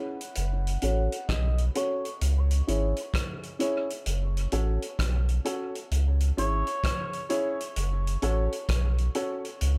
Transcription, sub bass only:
0.37 F#1
0.83 A1
1.29 B1
2.21 C#2
2.68 G#1
4.06 F#1
4.53 A1
4.99 B1
5.91 C#2
6.38 G#1
7.77 F#1
8.23 A1
8.69 B1
9.62 C#2

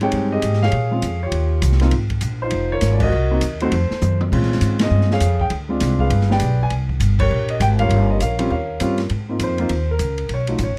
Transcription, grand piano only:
0.01 G#3 C4 D#4 G4 G#4 C#5 G5
0.32 G4 G#4 D#5
0.63 G#4 C#5 F5
0.91 G#3 C4 C#4 F4
1.23 F4 G4 C#5
1.81 A#3 C4 D#4 F4
2.42 D#4 F4 C5
2.72 F4 A#4 C#5
2.93 D5
3.03 F#4 A#4 D#5
3.31 A#3 C4 D#4 F#4
3.62 A3 C4 D#4 F#4 A4 C5
4.32 G#3 C4 C#4 F4
4.82 G#4 D#5
5.12 G#4 C#5 F5
5.41 G5
5.69 G#3 C4 D4 F4
6.00 G#4 B4 F5
6.30 G#3 B3 D4 G4 B4 D5 G5
6.63 G#5
7.20 G4 A#4 C#5
7.50 D#5
7.62 G5
7.79 G3 A#3 C#4 F4 A#4 C#5 F5
8.11 D#5
8.22 A#4 C#5 F5
8.39 G3 C4 C#4 F4
8.51 A#4 C#5 F5
8.81 G3 C4 C#4 F4
9.29 A#3 C4 D#4 F4
9.43 C5
9.59 A#3 C4 D#4 F4
9.91 A#4
10.34 C#5
10.48 F#3 A3 D#4 F4
10.63 C#5

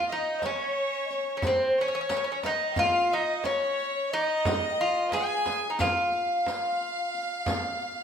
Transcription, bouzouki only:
0.12 D#4
0.46 C#4
1.37 C#4
1.47 C4
1.81 C#4
1.88 C#4
1.95 C#4
2.01 C#4
2.09 C#4
2.17 C#4
2.24 C#4
2.32 C#4
2.46 D#4
2.79 F4
3.13 D#4
3.45 C#4
4.13 D#4
4.81 F4
5.13 G#4
5.70 D#4
5.81 F4

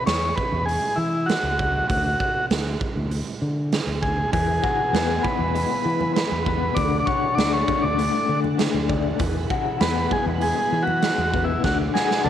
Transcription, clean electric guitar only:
4.33 E3
4.63 F#4
4.94 B3
5.23 E3
5.54 G#3
5.85 E3
6.16 G#3
6.46 B3
6.77 D3
7.08 F#4
7.38 D4
7.68 D3
7.98 A3
8.29 D3
8.58 A3
8.89 D4
9.19 E3
9.51 F#4
9.82 B3
10.12 E3
10.42 G#3
10.73 E3
11.04 G#3
11.34 B3
11.64 D3
11.95 F#4
12.25 D4

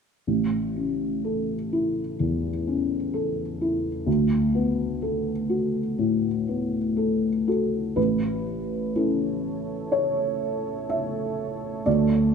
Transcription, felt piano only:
0.27 A1
0.76 C#4
1.24 A4
1.73 E4
2.20 E2
2.67 C#4
3.14 A4
3.61 E4
4.06 D2
4.55 B3
5.02 A4
5.50 F#4
5.98 A2
6.48 B3
6.97 A4
7.48 F#4 A4
7.96 A1 B4
8.96 C#4 E4 A4
9.92 C#5
10.89 E5
11.86 D2 D5

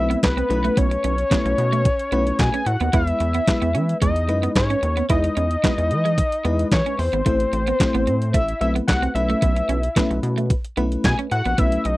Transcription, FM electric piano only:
Already playing: A3 C4 E4 B4
0.49 A3 C#4 E4 B4
1.30 A3 C#4 E4 B4
2.12 A3 C#4 E4 B4
2.93 G#3 B3 E4 B4
3.47 G#3 B3 E4 B4
4.28 G#3 D#4 E4 B4
5.09 G#3 D#4 E4 B4
5.63 G#3 D#4 E4 B4
6.45 G#3 D#4 E4 B4
7.26 A3 C4 E4 C5
7.80 A3 C4 E4 C5
8.61 A3 C4 E4 B4
9.15 A3 C#4 E4 B4
9.96 A3 C#4 E4 B4
10.77 A3 C#4 E4 B4
11.58 A3 C#4 E4 B4

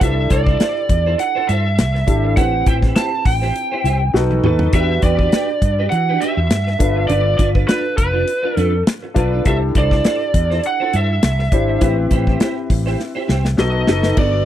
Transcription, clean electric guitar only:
0.00 E4 A4 C5
0.16 muted clean electric guitar stroke
0.30 E4 A4 C5
0.46 E4 A4 C5
0.60 E4 A4 C5
0.76 muted clean electric guitar stroke
0.90 muted clean electric guitar stroke
1.06 E4 A4 C5
1.20 muted clean electric guitar stroke
1.35 E4 A4 C5
1.49 E4 A4 C5
1.66 muted clean electric guitar stroke
1.78 muted clean electric guitar stroke
1.94 muted clean electric guitar stroke
2.24 muted clean electric guitar stroke
2.37 E4 G4 C5
2.53 muted clean electric guitar stroke
2.67 E4 G4 C5
2.83 E4 G4 C5
2.96 E4 G4 C5
3.13 muted clean electric guitar stroke
3.26 muted clean electric guitar stroke
3.42 E4 G4 C5
3.56 muted clean electric guitar stroke
3.72 E4 G4 C5
3.85 E4 G4 C5
4.01 muted clean electric guitar stroke
4.15 muted clean electric guitar stroke
4.31 muted clean electric guitar stroke
4.44 D#4 A4 B4
4.60 D#4 A4 B4
4.73 D4 G4 B4
4.90 muted clean electric guitar stroke
5.03 D4 G4 B4
5.20 D4 G4 B4
5.33 D4 G4 B4
5.50 muted clean electric guitar stroke
5.63 muted clean electric guitar stroke
5.79 D4 G4 B4
5.93 muted clean electric guitar stroke
6.09 D4 G4 B4
6.22 D4 G4 B4
6.38 muted clean electric guitar stroke
6.51 muted clean electric guitar stroke
6.67 muted clean electric guitar stroke
6.96 muted clean electric guitar stroke
7.09 D4 F4 B4
7.26 muted clean electric guitar stroke
7.38 D4 F4 B4
7.54 D4 F4 B4
7.68 D4 F4 B4
7.84 muted clean electric guitar stroke
7.97 muted clean electric guitar stroke
8.12 D4 F4 B4
8.27 muted clean electric guitar stroke
8.43 D4 F4 B4
8.56 D4 F4 B4
8.73 muted clean electric guitar stroke
8.87 muted clean electric guitar stroke
9.03 muted clean electric guitar stroke
9.16 D4 F4 B4
9.32 D4 F4 B4
9.45 E4 A4 C5
9.62 muted clean electric guitar stroke
9.76 E4 A4 C5
9.92 E4 A4 C5
10.05 E4 A4 C5
10.22 muted clean electric guitar stroke
10.35 muted clean electric guitar stroke
10.50 E4 A4 C5
10.65 muted clean electric guitar stroke
10.80 E4 A4 C5
10.93 E4 A4 C5
11.09 muted clean electric guitar stroke
11.23 muted clean electric guitar stroke
11.39 muted clean electric guitar stroke
11.68 muted clean electric guitar stroke
11.81 E4 G4 C5
11.97 muted clean electric guitar stroke
12.11 E4 G4 C5
12.27 E4 G4 C5
12.40 E4 G4 C5
12.57 muted clean electric guitar stroke
12.71 muted clean electric guitar stroke
12.86 E4 G4 C5
13.00 muted clean electric guitar stroke
13.15 E4 G4 C5
13.28 E4 G4 C5
13.45 muted clean electric guitar stroke
13.58 muted clean electric guitar stroke
13.73 muted clean electric guitar stroke
13.87 D#4 A4 B4
14.03 D#4 A4 B4
14.17 B3 F#4 A4
14.33 muted clean electric guitar stroke

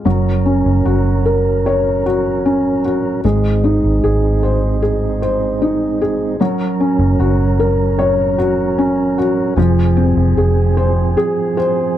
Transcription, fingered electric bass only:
0.05 F#1
0.66 F#1
0.86 F#1
3.25 G#1
3.84 G#1
4.04 G#1
6.40 F#1
6.99 F#1
7.19 F#1
9.57 F1
10.17 F1
10.37 F1

